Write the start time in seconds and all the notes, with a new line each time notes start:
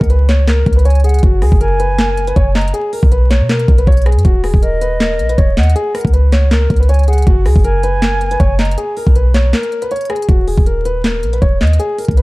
0.01 C#2, kick, closed hi-hat
0.10 B4, closed hi-hat
0.29 C#5, snare, clap, closed hi-hat
0.48 A#4, snare, clap, closed hi-hat
0.66 C#2, kick, closed hi-hat
0.73 B4, closed hi-hat
0.79 closed hi-hat
0.85 C#5 G#5, closed hi-hat
0.90 closed hi-hat
0.95 closed hi-hat
1.00 closed hi-hat
1.04 G#4 F#5, closed hi-hat
1.09 closed hi-hat
1.14 closed hi-hat
1.19 closed hi-hat
1.23 F#1 F#4, kick, closed hi-hat
1.42 C#2 G#4, cross-stick, open hi-hat
1.52 F#1, kick
1.61 A#4 G#5, closed hi-hat
1.80 B4, closed hi-hat
1.98 A#4, snare, clap, closed hi-hat
2.17 closed hi-hat
2.27 B4, closed hi-hat
2.36 F#1 C#5, kick, closed hi-hat
2.55 D#5 A#5, snare, clap, closed hi-hat
2.61 closed hi-hat
2.68 closed hi-hat
2.74 G#4, closed hi-hat
2.93 A#4, open hi-hat
3.03 B1, kick
3.12 B4, closed hi-hat
3.30 C#5, snare, clap, closed hi-hat
3.41 B2
3.49 A#4, snare, clap, closed hi-hat
3.59 closed hi-hat
3.68 B1, kick, closed hi-hat
3.78 B4, closed hi-hat
3.87 B1 C#5, kick, closed hi-hat
3.92 closed hi-hat
3.97 closed hi-hat
4.02 closed hi-hat
4.06 G#4, cross-stick, closed hi-hat
4.12 F#2, closed hi-hat
4.19 closed hi-hat
4.25 D#1 F#4, kick, closed hi-hat
4.44 G#4, cross-stick, open hi-hat
4.54 D#1, kick
4.62 A#4 D#5, closed hi-hat
4.81 B4, closed hi-hat
5.00 A#4, snare, clap, closed hi-hat
5.19 A#1, closed hi-hat
5.29 B4, closed hi-hat
5.38 D#1 C#5, kick, closed hi-hat
5.57 D#2 D#5 F#5, snare, clap, closed hi-hat
5.63 closed hi-hat
5.69 closed hi-hat
5.76 G#4, closed hi-hat
5.95 A#4, cross-stick, closed hi-hat, open hi-hat
6.01 C#2, kick, closed hi-hat
6.07 closed hi-hat
6.13 B4, closed hi-hat
6.32 C#5, snare, clap, closed hi-hat
6.51 A#4, snare, clap, closed hi-hat
6.70 C#2, kick, closed hi-hat
6.76 B4, closed hi-hat
6.83 closed hi-hat
6.89 C#5 G#5, closed hi-hat
6.94 closed hi-hat
6.99 closed hi-hat
7.03 closed hi-hat
7.08 G#4 F#5, closed hi-hat
7.13 closed hi-hat
7.18 closed hi-hat
7.22 closed hi-hat
7.27 F#1 F#4, kick, closed hi-hat
7.46 C#2 G#4, cross-stick, open hi-hat
7.56 F#1, kick
7.64 A#4 G#5, closed hi-hat
7.83 B4, closed hi-hat
8.02 A#4, snare, clap, closed hi-hat
8.21 closed hi-hat
8.31 B4, closed hi-hat
8.40 F#1 C#5, kick, closed hi-hat
8.59 D#5 A#5, snare, clap, closed hi-hat
8.65 closed hi-hat
8.71 closed hi-hat
8.78 G#4, closed hi-hat
8.97 A#4, open hi-hat
9.07 B1, kick
9.15 B4, closed hi-hat
9.34 C#5, snare, clap, closed hi-hat
9.53 A#4, snare, clap, closed hi-hat
9.63 closed hi-hat
9.72 closed hi-hat
9.82 B4, closed hi-hat
9.91 C#5, closed hi-hat
9.96 closed hi-hat
10.01 closed hi-hat
10.05 closed hi-hat
10.10 G#4, cross-stick, closed hi-hat
10.16 closed hi-hat
10.22 closed hi-hat
10.29 D#1 F#4, kick, closed hi-hat
10.47 G#4, open hi-hat
10.58 D#1, kick
10.66 A#4, closed hi-hat
10.85 B4, closed hi-hat
11.04 A#4, snare, clap, closed hi-hat
11.23 A#1, closed hi-hat
11.33 B4, closed hi-hat
11.42 D#1 C#5, kick, closed hi-hat
11.61 D#2 D#5, snare, clap, closed hi-hat
11.67 closed hi-hat
11.73 closed hi-hat
11.79 G#4, closed hi-hat
11.98 A#4, closed hi-hat, open hi-hat
12.05 C#2, kick, closed hi-hat
12.11 closed hi-hat
12.17 B4, closed hi-hat